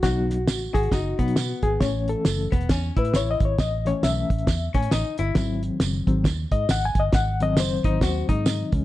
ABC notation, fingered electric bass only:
X:1
M:4/4
L:1/16
Q:"Swing" 1/4=135
K:G#phr
V:1 name="Fingered electric bass" clef=bass
B,,,4 A,,,2 G,,,2 F,,,2 B,,4 G,,,2 | A,,,4 F,,,2 E,,,2 E,,2 A,,2 A,,,2 G,,,2 | A,,,4 B,,,2 A,,,2 E,,2 A,,2 A,,, z =G,,,2 | G,,,4 F,,,2 G,,,2 D,,2 G,,2 G,,,2 =G,,,2 |
G,,,4 F,,,2 G,,,2 D,,2 G,,4 C,,2 |]